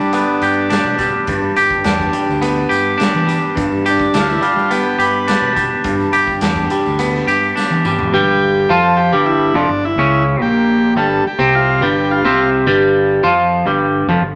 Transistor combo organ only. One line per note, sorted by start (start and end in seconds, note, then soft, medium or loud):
0.00 0.95 D4 medium
3.89 4.17 D4 medium
4.15 4.22 E4 medium
4.20 4.27 F4 medium
4.29 4.44 E4 medium
4.42 4.72 F4 medium
4.72 5.01 G4 loud
4.99 5.53 B4 medium
8.14 8.72 G4 loud
8.70 8.99 A4 loud
8.97 9.27 G4 medium
9.26 9.56 E4 medium
9.55 9.84 D4 medium
9.85 10.24 E4 medium
10.42 10.94 G4 loud
10.98 11.24 A4 medium
11.27 11.55 G4 medium
11.55 11.83 F4 medium
11.84 12.12 G4 medium
12.11 12.50 F4 medium